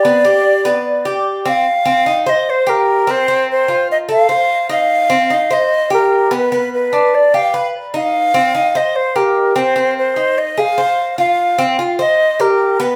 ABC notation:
X:1
M:4/4
L:1/8
Q:1/4=148
K:Cm
V:1 name="Flute"
d6 z f- | f3 e c B2 c- | c c2 e f3 f- | f3 e2 B2 =B- |
=B B2 d f2 z f- | f3 e c B2 c- | c c2 e f3 f- | f3 e2 B2 =B |]
V:2 name="Cuban tres"
=B, G2 B,2 G2 C | z C E c2 G2 C | C2 F2 =A c2 E- | E C E c2 G2 =B, |
=B,2 D2 G =B2 E- | E C E c2 G2 C | C2 E2 A c2 F- | F C F c2 G2 =B, |]